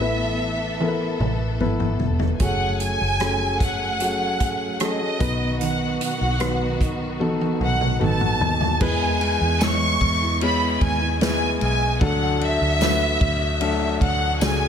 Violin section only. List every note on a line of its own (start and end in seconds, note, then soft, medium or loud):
0.00 1.61 E5 medium
2.43 2.79 F#5 medium
2.82 3.58 G#5 loud
3.62 4.81 F#5 medium
4.83 5.58 D#5 medium
5.62 6.02 F#5 medium
6.03 6.78 F#5 medium
7.65 8.00 F#5 medium
8.05 8.79 A5 loud
8.85 9.63 G#5 loud
9.63 10.42 C#6 loud
10.44 10.80 B5 medium
10.84 11.21 G#5 medium
11.22 11.59 G#5 loud
11.63 11.99 G#5 loud
12.04 12.43 F#5 medium
12.44 13.99 E5 loud
14.02 14.39 F#5 medium
14.43 14.68 G#5 loud